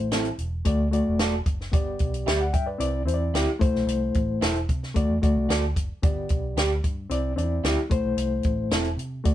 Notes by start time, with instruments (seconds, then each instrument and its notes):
Already playing: fingered electric bass A1, reed electric piano A3 E4 C5
0.12 clean electric guitar C4 E4 A4, snare, closed hi-hat
0.25 closed hi-hat
0.38 fingered electric bass E1, closed hi-hat
0.65 fingered electric bass D2, reed electric piano A3 F#4 D5, kick, closed hi-hat
0.91 reed electric piano A3 F#4 D5, closed hi-hat
1.07 fingered electric bass E1
1.19 clean electric guitar F#4 A4 D5, snare, closed hi-hat
1.46 fingered electric bass F#1, kick, closed hi-hat
1.61 snare
1.72 fingered electric bass G1, reed electric piano B3 G4 D5, kick, closed hi-hat
1.99 fingered electric bass B1, kick, closed hi-hat
2.14 closed hi-hat
2.26 fingered electric bass D2, clean electric guitar G4 B4 D5, reed electric piano E5, snare, closed hi-hat
2.41 reed electric piano D5 F#5
2.53 fingered electric bass G2, reed electric piano E5 G5, kick, closed hi-hat
2.66 reed electric piano B4 D5
2.78 fingered electric bass C2, reed electric piano C4 E4 D5, closed hi-hat
3.05 fingered electric bass E2, reed electric piano C4 E4 C5, closed hi-hat
3.14 reed electric piano D5
3.34 fingered electric bass D2, clean electric guitar E4 G4 D5, snare, closed hi-hat
3.59 fingered electric bass C2, reed electric piano A3 E4 C5, kick, closed hi-hat
3.74 fingered electric bass B1, snare
3.87 fingered electric bass C2, closed hi-hat
4.14 fingered electric bass A1, kick, closed hi-hat
4.41 fingered electric bass E1, clean electric guitar E4 A4 C5, snare, closed hi-hat
4.55 closed hi-hat
4.69 fingered electric bass C3, kick, closed hi-hat
4.83 snare
4.94 fingered electric bass D2, reed electric piano A3 F#4 D5, kick, closed hi-hat
5.09 fingered electric bass E2
5.22 fingered electric bass D2, reed electric piano A3 F#4 D5, kick, closed hi-hat
5.36 fingered electric bass C2
5.48 fingered electric bass D2, clean electric guitar F#4 A4 D5, snare, closed hi-hat
5.76 fingered electric bass F#1, kick, closed hi-hat
6.03 fingered electric bass G1, reed electric piano B3 G4 D5, kick, closed hi-hat
6.29 fingered electric bass B1, kick, closed hi-hat
6.56 fingered electric bass D2, clean electric guitar G4 B4 D5, snare, closed hi-hat
6.84 fingered electric bass G2, kick, closed hi-hat
7.10 fingered electric bass C2, reed electric piano C4 E4 D5, closed hi-hat
7.36 fingered electric bass E2, reed electric piano C4 D4 D5, closed hi-hat
7.43 reed electric piano E4
7.64 fingered electric bass D2, clean electric guitar E4 G4 D5, snare, closed hi-hat
7.90 fingered electric bass C2, reed electric piano A3 E4 C5, kick, closed hi-hat
8.05 fingered electric bass B1
8.17 fingered electric bass C2, closed hi-hat
8.43 fingered electric bass A1, kick, closed hi-hat
8.70 fingered electric bass E1, clean electric guitar C4 E4 A4, snare, closed hi-hat
8.84 closed hi-hat
8.97 fingered electric bass C3, closed hi-hat
9.24 fingered electric bass D2, reed electric piano A3 F#4 D5, kick, closed hi-hat